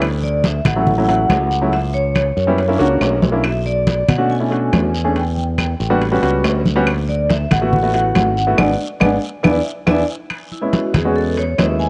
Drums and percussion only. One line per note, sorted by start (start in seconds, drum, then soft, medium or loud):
0.01 high conga soft
0.01 high timbale loud
0.01 long guiro medium
0.01 claves medium
0.23 high conga soft
0.44 high conga medium
0.44 high timbale medium
0.44 low timbale medium
0.44 short guiro medium
0.65 high conga loud
0.65 low conga medium
0.65 high timbale loud
0.65 short guiro medium
0.65 claves medium
0.87 high conga soft
0.87 low conga medium
0.87 long guiro medium
1.08 high conga soft
1.08 high timbale medium
1.30 high conga medium
1.30 high timbale medium
1.30 low timbale medium
1.30 short guiro medium
1.30 claves medium
1.51 high conga soft
1.51 short guiro medium
1.72 high conga soft
1.72 high timbale medium
1.72 long guiro medium
1.95 high conga soft
2.15 high conga medium
2.15 high timbale medium
2.15 low timbale medium
2.15 short guiro medium
2.15 claves medium
2.37 high conga soft
2.37 short guiro medium
2.58 high conga soft
2.58 high timbale medium
2.58 long guiro medium
2.80 high conga soft
2.80 high timbale medium
3.01 high conga soft
3.01 low timbale loud
3.01 short guiro medium
3.01 claves medium
3.23 high conga medium
3.23 low timbale medium
3.23 short guiro medium
3.44 high conga soft
3.44 high timbale loud
3.44 long guiro medium
3.44 claves medium
3.66 high conga soft
3.87 high conga medium
3.87 high timbale medium
3.87 low timbale medium
3.87 short guiro medium
4.09 high conga loud
4.09 low conga medium
4.09 high timbale medium
4.09 short guiro medium
4.09 claves medium
4.30 high conga soft
4.30 long guiro medium
4.51 high conga soft
4.51 high timbale medium
4.73 high conga medium
4.73 high timbale medium
4.73 low timbale medium
4.73 short guiro medium
4.73 claves medium
4.94 high conga soft
4.94 short guiro medium
5.16 high conga soft
5.16 high timbale medium
5.16 long guiro medium
5.37 high conga soft
5.58 high conga medium
5.58 high timbale medium
5.58 low timbale medium
5.58 short guiro medium
5.58 claves medium
5.80 high conga soft
5.80 short guiro medium
6.01 high conga soft
6.01 high timbale medium
6.01 long guiro medium
6.23 high conga soft
6.23 high timbale medium
6.44 high conga soft
6.44 high timbale medium
6.44 low timbale medium
6.44 short guiro medium
6.44 claves medium
6.66 high conga medium
6.66 short guiro medium
6.87 high conga soft
6.87 high timbale medium
6.87 long guiro medium
6.87 claves medium
7.09 high conga soft
7.29 high conga loud
7.29 high timbale medium
7.29 low timbale medium
7.29 short guiro medium
7.51 high conga loud
7.51 low conga medium
7.51 high timbale loud
7.51 short guiro medium
7.51 claves medium
7.73 high conga soft
7.73 low conga medium
7.73 long guiro medium
7.94 high conga soft
7.94 high timbale medium
8.15 high conga medium
8.15 high timbale loud
8.15 low timbale medium
8.15 short guiro medium
8.15 claves medium
8.37 high conga soft
8.37 short guiro medium
8.58 high conga medium
8.58 high timbale loud
8.58 long guiro loud
8.58 claves loud
9.01 high conga medium
9.01 high timbale loud
9.01 long guiro loud
9.01 claves loud
9.44 high conga loud
9.44 high timbale loud
9.44 long guiro medium
9.44 claves loud
9.87 high conga loud
9.87 high timbale loud
9.87 long guiro loud
9.87 claves medium
10.30 high conga soft
10.30 high timbale loud
10.30 long guiro medium
10.30 claves medium
10.52 high conga soft
10.73 high conga medium
10.73 high timbale medium
10.73 low timbale medium
10.73 short guiro medium
10.94 high conga loud
10.94 low conga medium
10.94 high timbale medium
10.94 short guiro medium
10.94 claves medium
11.16 high conga soft
11.16 long guiro medium
11.37 high conga soft
11.37 high timbale medium
11.58 high conga medium
11.58 high timbale medium
11.58 low timbale medium
11.58 short guiro medium
11.58 claves medium
11.80 high conga soft
11.80 short guiro medium